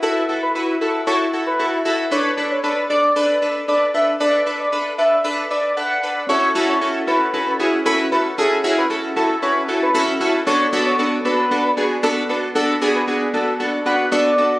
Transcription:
X:1
M:4/4
L:1/16
Q:1/4=115
K:F#m
V:1 name="Analog synth lead"
A2 z B z2 A2 c z2 B2 z3 | c2 z c z2 d4 z2 d z e z | d2 z d z2 e2 z2 d2 f3 z | c2 z c z2 B4 z2 A z B z |
A2 z B z2 A2 c z2 B2 z3 | c2 z c z2 B4 z2 A z B z | A2 z B z2 A2 z2 f2 d3 z |]
V:2 name="Synth keys"
[EFB]2 [EFA]2 [EFB]2 [EFA]2 [EFA]2 [EFA]2 [EFA]2 [EFA]2 | [DAB]2 [DAB]2 [DAB]2 [DAd]2 [DAB]2 [DAB]2 [DAB]2 [DAB]2 | [DAB]2 [DAB]2 [DAB]2 [DAB]2 [DAB]2 [DAB]2 [DAB]2 [DAB]2 | [CEFA]2 [CEFA]2 [CEFA]2 [CEFA]2 [CEFA]2 [CEFG]2 [CEFB]2 [CEFA]2 |
[CEFG]2 [CEFG]2 [CEFA]2 [CEFA]2 [CEFB]2 [CEFA]2 [CEFA]2 [CEFA]2 | [B,DFA]2 [B,DFA]2 [B,DFA]2 [B,DFA]2 [B,DFA]2 [B,DFG]2 [B,DFA]2 [B,DFA]2 | [B,DFA]2 [B,DFG]2 [B,DFG]2 [B,DFA]2 [B,DFA]2 [B,DFB]2 [B,DFA]2 [B,DFA]2 |]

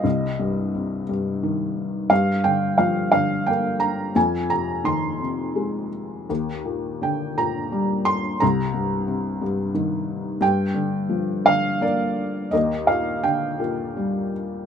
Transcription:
X:1
M:3/4
L:1/8
Q:1/4=86
K:Eb
V:1 name="Felt piano"
e3 z3 | f g f f g b | a b c'3 z | z2 g b2 c' |
b4 z2 | g3 f d2 | e f g3 z |]
V:2 name="Felt piano" clef=bass
C,, G,, C, G,, E,2 | G,, D, F, D, B,2 | F,, C, E, C, A,2 | E,, B,, D, B,, G,2 |
C,, G,, C, G,, E,2 | G,, D, F, D, B,2 | E,, B,, D, B,, G,2 |]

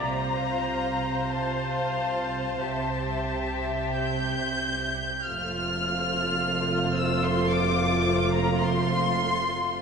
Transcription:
X:1
M:4/4
L:1/16
Q:1/4=48
K:F
V:1 name="Violin section"
b4 a8 g'4 | f'6 e' c' d'3 b c'4 |]
V:2 name="Violin section"
[Ff]4 [Ff]4 [Ge]8 | [Fc]16 |]
V:3 name="Viola section"
c12- c2 z2 | [A,F]16 |]
V:4 name="Cello section" clef=bass
C,8 C,8 | F,,16 |]
V:5 name="Double bass section" clef=bass
C,,8 C,,8 | F,,,16 |]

